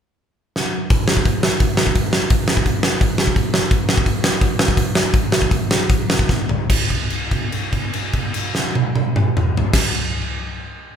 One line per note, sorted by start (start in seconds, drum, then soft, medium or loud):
0.56 snare medium
0.90 kick loud
0.90 open hi-hat medium
1.08 snare loud
1.17 kick medium
1.25 kick medium
1.25 open hi-hat medium
1.43 snare loud
1.60 kick loud
1.60 open hi-hat medium
1.77 snare loud
1.87 kick medium
1.95 kick loud
1.95 open hi-hat medium
2.13 snare loud
2.30 kick loud
2.30 open hi-hat medium
2.48 snare loud
2.57 kick medium
2.66 kick medium
2.66 open hi-hat medium
2.83 snare loud
3.01 kick loud
3.01 open hi-hat medium
3.18 snare loud
3.27 kick medium
3.36 kick loud
3.36 open hi-hat soft
3.54 snare loud
3.71 kick loud
3.71 open hi-hat medium
3.89 snare loud
3.97 kick loud
4.06 kick medium
4.06 open hi-hat medium
4.24 snare loud
4.41 kick loud
4.41 open hi-hat medium
4.59 snare loud
4.68 kick medium
4.77 kick loud
4.77 open hi-hat medium
4.95 snare loud
5.14 kick loud
5.14 open hi-hat medium
5.32 snare loud
5.42 kick medium
5.51 kick medium
5.51 open hi-hat medium
5.71 snare loud
5.90 kick loud
5.90 open hi-hat medium
6.10 snare loud
6.19 kick medium
6.29 kick medium
6.29 snare medium
6.49 floor tom medium
6.70 kick loud
6.70 crash loud
6.90 kick medium
6.90 crash soft
7.10 crash soft
7.31 kick medium
7.31 crash soft
7.52 crash soft
7.73 kick medium
7.73 crash soft
7.93 crash medium
8.13 kick medium
8.13 crash soft
8.34 crash medium
8.55 snare medium
8.75 high tom medium
8.95 high tom medium
9.16 mid tom medium
9.37 mid tom loud
9.57 floor tom loud
9.73 kick loud
9.73 snare loud
9.73 crash loud